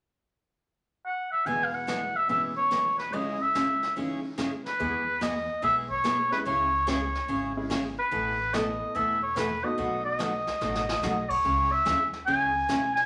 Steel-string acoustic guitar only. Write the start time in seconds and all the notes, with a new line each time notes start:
1.46 E3 G#3 B3 E4 G#4
1.87 E3 G#3 B3 E4 G#4
2.29 E3 G#3 B3 E4 G#4
2.71 E3 G#3 B3 E4 G#4
3.13 C#3 G#3 C#4 E4 G#4
3.55 C#3 G#3 C#4 E4 G#4
3.96 C#3 G#3 C#4 E4 G#4
4.38 C#3 G#3 C#4 E4 G#4
4.80 E3 G#3 B3 E4 G#4
5.21 E3 G#3 B3 E4 G#4
5.62 E3 G#3 B3 E4 G#4
6.04 E3 G#3 B3 E4 G#4
6.45 C#3 G#3 C#4 E4 G#4
6.87 C#3 G#3 C#4 E4 G#4
7.28 C#3 G#3 C#4 E4 G#4
7.70 C#3 G#3 C#4 E4 G#4
8.11 B2 E3 A3 E4 A4
8.54 B2 E3 A3 E4 A4
8.95 B2 E3 A3 E4 A4
9.36 B2 E3 A3 E4 A4
9.78 B2 F#3 A3 D#4 F#4
10.19 B2 F#3 A3 D#4 F#4
10.61 B2 F#3 A3 D#4 F#4
11.03 B2 F#3 A3 D#4 F#4
11.44 C#3 G#3 C#4 E4 G#4
11.85 C#3 G#3 C#4 E4 G#4
12.27 C#3 G#3 C#4 E4 G#4
12.69 C#3 G#3 C#4 E4 G#4